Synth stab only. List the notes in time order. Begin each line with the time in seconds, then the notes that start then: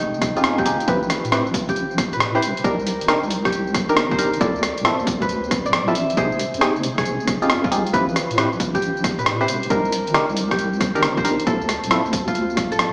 0.36 C4 D#4 G4 G#4
0.66 C4 D#4 G4 G#4
0.88 C4 E4 G4 B4
1.32 C4 E4 G4 B4
2.35 C4 E4 G4 B4
2.64 D4 D#4 G4 A#4
3.08 D4 D#4 G4 A#4
3.89 D4 D#4 G4 A#4
4.19 D4 D#4 G4 A#4
4.41 C4 E4 F4 A4
4.85 C4 E4 F4 A4
5.88 C4 E4 F4 A4
6.17 C4 D#4 G4 G#4
6.61 C4 D#4 G4 G#4
7.42 C4 D#4 G4 G#4
7.72 C4 D#4 G4 G#4
7.94 C4 E4 G4 B4
8.38 C4 E4 G4 B4
9.41 C4 E4 G4 B4
9.70 D4 D#4 G4 A#4
10.14 D4 D#4 G4 A#4
10.95 D4 D#4 G4 A#4
11.25 D4 D#4 G4 A#4
11.47 C4 E4 F4 A4
11.91 C4 E4 F4 A4